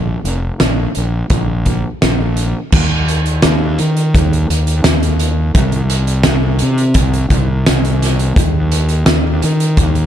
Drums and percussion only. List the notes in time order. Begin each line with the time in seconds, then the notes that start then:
0.25 closed hi-hat
0.60 snare, closed hi-hat
0.95 closed hi-hat
1.30 kick, closed hi-hat
1.66 kick, closed hi-hat
2.02 snare, closed hi-hat
2.37 closed hi-hat
2.72 kick, crash
3.08 closed hi-hat
3.26 closed hi-hat
3.42 snare, closed hi-hat
3.79 closed hi-hat
3.97 closed hi-hat
4.15 kick, closed hi-hat
4.33 closed hi-hat
4.50 closed hi-hat
4.67 closed hi-hat
4.84 snare, closed hi-hat
5.03 closed hi-hat
5.19 closed hi-hat
5.55 kick, closed hi-hat
5.72 closed hi-hat
5.90 closed hi-hat
6.07 closed hi-hat
6.23 snare, closed hi-hat
6.59 closed hi-hat
6.78 closed hi-hat
6.94 kick, closed hi-hat
7.14 closed hi-hat
7.30 kick, closed hi-hat
7.66 snare, closed hi-hat
7.85 closed hi-hat
8.02 snare, closed hi-hat
8.19 closed hi-hat
8.36 kick, closed hi-hat
8.72 closed hi-hat
8.89 closed hi-hat
9.06 snare, closed hi-hat
9.42 closed hi-hat
9.60 closed hi-hat
9.77 kick, closed hi-hat
9.95 closed hi-hat